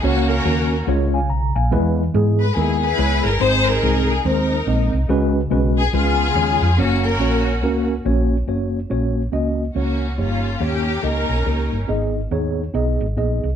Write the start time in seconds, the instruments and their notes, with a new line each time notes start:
0.02 fingered electric bass C#2, tine electric piano C#3 A#3 C#4 F#4 C#5, string section A#3 C#4 F#4
0.29 string section C#4 F#4 A#4
0.45 fingered electric bass D#2, tine electric piano A#3 C#4 F#4 A#4
0.87 fingered electric bass C#2, tine electric piano C#3 G#3 C#4 F4 C#5
1.14 tine electric piano F5 G#5
1.30 fingered electric bass B1, tine electric piano A#5
1.55 fingered electric bass A#1, tine electric piano F5 G#5
1.71 fingered electric bass E2, tine electric piano E3 G#3 B3 E4 B4
2.14 fingered electric bass G#2, tine electric piano G#3 B3 E4 G#4
2.41 string section B4
2.56 fingered electric bass D#2, tine electric piano G#3 B3 E4 A#4, string section B3 E4 G#4
2.83 string section E4 G#4 B4
2.98 fingered electric bass C#2, tine electric piano G#3 B3 E4 C#5
3.25 fingered electric bass G1, string section A#4
3.40 fingered electric bass G#1, tine electric piano G#2 G#3 C4 D#4 C5, string section D#4 G#4 C5
3.67 string section D#4 A#4
3.82 fingered electric bass C2, tine electric piano G#3 C4 D#4 G#4
4.09 string section G#4
4.24 fingered electric bass D#2, tine electric piano G#3 C4 D#4 C5, string section D#4 A#4
4.66 fingered electric bass A#1, tine electric piano G#3 C4 D#4 D#5
4.93 fingered electric bass C2
5.09 fingered electric bass C#2, tine electric piano C#3 G#3 C#4 F#4 B4
5.50 fingered electric bass B1, tine electric piano G#3 C#4 F#4 B4
5.78 string section G#4
5.93 fingered electric bass C#2, tine electric piano C#3 G#3 C#4 F4 B4, string section B3 F4 G#4
6.35 fingered electric bass D#2, tine electric piano G#3 C#4 F4 C#5
6.62 fingered electric bass F2
6.78 fingered electric bass F#1, tine electric piano A#3 C#4 F#4 C#5, string section A#3 C#4 F#4
7.04 string section C#4 F#4 A#4
7.20 fingered electric bass A#1, tine electric piano A#3 C#4 F#4 C#5
7.63 fingered electric bass C#2, tine electric piano A#3 C#4 F#4 A#4
8.05 fingered electric bass A#1, tine electric piano A#3 C#4 F#4 C#5
8.47 fingered electric bass F#1, tine electric piano A#3 C#4 F#4 C#5
8.90 fingered electric bass A#1, tine electric piano A#3 C#4 F#4 C#5
9.32 fingered electric bass C#2, tine electric piano A#3 C#4 F#4 D#5
9.75 fingered electric bass C#2, tine electric piano A#3 C#4 F#4 C#5, string section A#3 C#4 F#4
10.18 fingered electric bass G1, tine electric piano G2 A#3 D#4 G4 C#5, string section A#3 C#4 F4
10.60 fingered electric bass D#2, tine electric piano A#3 D#4 G4 C#5, string section A#3 C#4 G4
11.02 fingered electric bass C#2, tine electric piano A#3 D#4 G4 D#5, string section C#4 D#4 A#4
11.29 fingered electric bass B1
11.45 fingered electric bass C#2, tine electric piano A#3 D#4 G4 A#4
11.72 fingered electric bass G1
11.88 fingered electric bass G#1, tine electric piano G#2 B3 D#4 G#4 D#5
12.31 fingered electric bass D#2, tine electric piano B3 D#4 G#4 C#5
12.74 fingered electric bass B1, tine electric piano B3 D#4 G#4 D#5
13.01 fingered electric bass G#1
13.17 fingered electric bass A#1, tine electric piano B3 D#4 G#4 D#5
13.44 fingered electric bass C2